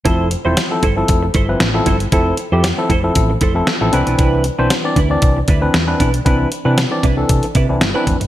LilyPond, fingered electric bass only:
\new Staff \with { instrumentName = "Fingered electric bass" } { \clef bass \time 4/4 \key f \lydian \tempo 4 = 116 f,,8. e,,16 r8 g,,8 f,,8 g,,8 a,,8 g,,8 | f,,8 r16 f,8 r16 f,,8 a,,8 f,,8 r16 a,,16 c,16 b,,16 | c,8. b,,16 r8 d,8 c,8 d,8 e,8 b,,8 | c,8 r16 c8 r16 c,8 c16 r16 c16 c,16 g,,16 r16 f,,16 g,,16 | }